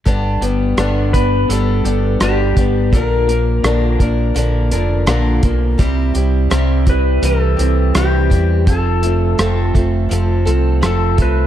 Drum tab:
HH |xxxxxxxx|xxxxxxxx|xxxxxxxx|xxxxxxxx|
SD |--r---r-|--r---r-|--r---r-|--r---r-|
BD |o--o---o|o--o---o|o--o---o|o--o---o|